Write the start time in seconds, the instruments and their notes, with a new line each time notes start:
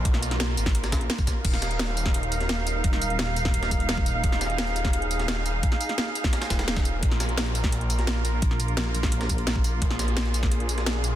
Already playing: string section A#3 F4 A#4
0.05 detuned saw bass B1, kick, closed hi-hat
0.14 snare
0.23 closed hi-hat, tambourine
0.31 snare, closed hi-hat
0.40 snare, closed hi-hat
0.57 detuned saw bass G#1, closed hi-hat, tambourine
0.66 kick, snare
0.75 closed hi-hat
0.84 snare, closed hi-hat, tambourine
0.92 detuned saw bass A#1, kick, snare, closed hi-hat, tambourine
1.01 closed hi-hat
1.10 snare, closed hi-hat
1.18 kick, tambourine
1.27 kick, snare, closed hi-hat, tambourine
1.45 detuned saw bass D#1, string section D#4 A#4 F5, kick, closed hi-hat, crash
1.53 snare
1.62 snare, closed hi-hat, tambourine
1.71 closed hi-hat
1.79 snare, closed hi-hat
1.88 closed hi-hat
1.97 closed hi-hat, tambourine
2.06 kick, snare
2.14 closed hi-hat
2.23 closed hi-hat
2.32 closed hi-hat, tambourine
2.40 snare, closed hi-hat
2.49 snare, closed hi-hat
2.67 closed hi-hat, tambourine
2.84 wobble bass D#1, kick, closed hi-hat
2.93 snare
3.02 closed hi-hat, tambourine
3.10 closed hi-hat
3.19 snare, closed hi-hat
3.36 closed hi-hat, tambourine
3.45 kick, snare
3.54 closed hi-hat
3.63 snare, closed hi-hat
3.71 kick, closed hi-hat, tambourine
3.80 closed hi-hat
3.89 snare, closed hi-hat
3.98 kick
4.06 closed hi-hat, tambourine
4.24 detuned saw bass D#1, string section G#4, kick, closed hi-hat
4.32 snare
4.41 snare, closed hi-hat, tambourine
4.50 closed hi-hat
4.58 snare, closed hi-hat
4.67 closed hi-hat
4.76 closed hi-hat, tambourine
4.85 kick, snare
4.93 closed hi-hat
5.02 closed hi-hat
5.11 closed hi-hat, tambourine
5.19 snare, closed hi-hat
5.28 snare, closed hi-hat
5.46 closed hi-hat, tambourine
5.63 kick, closed hi-hat
5.72 snare
5.81 closed hi-hat, tambourine
5.89 snare, closed hi-hat
5.98 snare, closed hi-hat
6.15 closed hi-hat, tambourine
6.24 kick, snare
6.33 snare, closed hi-hat
6.42 snare, closed hi-hat, tambourine
6.50 detuned saw bass D#1, kick, snare, closed hi-hat, tambourine
6.59 snare, closed hi-hat
6.68 snare, closed hi-hat
6.76 kick, snare, closed hi-hat
6.85 closed hi-hat, tambourine
7.03 detuned saw bass A#1, string section A#3 F4 A#4, kick, closed hi-hat
7.11 snare
7.20 snare, closed hi-hat, tambourine
7.29 closed hi-hat
7.37 snare, closed hi-hat
7.46 closed hi-hat
7.55 closed hi-hat, tambourine
7.64 kick, snare
7.72 closed hi-hat
7.81 closed hi-hat
7.90 closed hi-hat, tambourine
7.99 snare, closed hi-hat
8.07 snare, closed hi-hat
8.25 closed hi-hat, tambourine
8.42 wobble bass A#1, kick, closed hi-hat
8.51 snare
8.60 closed hi-hat, tambourine
8.68 closed hi-hat
8.77 snare, closed hi-hat
8.95 closed hi-hat, tambourine
9.03 kick, snare
9.12 closed hi-hat
9.21 snare, closed hi-hat
9.29 kick, closed hi-hat, tambourine
9.38 closed hi-hat
9.47 snare, closed hi-hat
9.56 kick
9.64 closed hi-hat, tambourine
9.82 detuned saw bass A#1, string section G#4, kick, closed hi-hat
9.90 snare
9.99 snare, closed hi-hat, tambourine
10.08 closed hi-hat
10.17 snare, closed hi-hat
10.25 closed hi-hat
10.34 closed hi-hat, tambourine
10.43 kick, snare
10.52 closed hi-hat
10.60 closed hi-hat
10.69 closed hi-hat, tambourine
10.78 snare, closed hi-hat
10.86 snare, closed hi-hat
11.04 closed hi-hat, tambourine